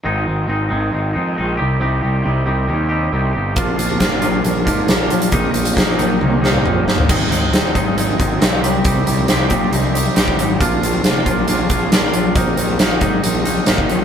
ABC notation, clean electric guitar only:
X:1
M:4/4
L:1/8
Q:1/4=137
K:Ablyd
V:1 name="Clean electric guitar"
[A,,E,A,CE] [A,CE] [E,A,CE] [A,,E,A,CE] [E,A,CE] [A,,E,A,CE] [E,A,CE] [C,G,CEG] | [C,G,CEG] [CEG] [G,CEG] [C,G,CEG] [G,CEG] [C,G,CEG] [G,CEG] [CEG] | [B,,F,B,DF] [B,DF] [F,B,DF] [B,,F,B,DF] [F,B,DF] [B,,F,B,DF] [F,B,DF] [B,DF] | [E,,B,,E,B,E] [E,B,E] [B,,E,B,E] [E,,B,,E,B,E] [B,,E,B,E] [E,,B,,E,B,E] [B,,E,B,E] [E,B,E] |
[A,,E,A,CE] [A,CE] [E,A,CE] [A,,E,A,CE] [E,A,CE] [A,CE] [A,,E,A,CE] [C,G,CEG] | [C,G,CEG] [CEG] [G,CEG] [C,G,CEG] [G,CEG] [CEG] [C,G,CEG] [CEG] | [B,,F,B,DF] [B,DF] [F,B,DF] [B,,F,B,DF] [F,B,DF] [B,DF] [B,,F,B,DF] [B,DF] | [E,,B,,E,B,E] [E,B,E] [B,,E,B,E] [E,,B,,E,B,E] [B,,E,B,E] [E,B,E] [E,,B,,E,B,E] [E,B,E] |]